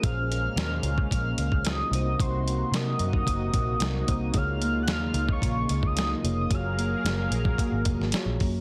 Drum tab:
HH |x-x-x-x-x-x-x-x-|x-x-x-x-x-x-x-x-|x-x-x-x-x-x-x-x-|x-x-x-x-x-x-x-o-|
SD |----o-------o---|----o-------o---|----o-------o---|----o------oo---|
BD |o------oo--o----|o------oo-o---o-|o------oo--o----|o------oo-o---o-|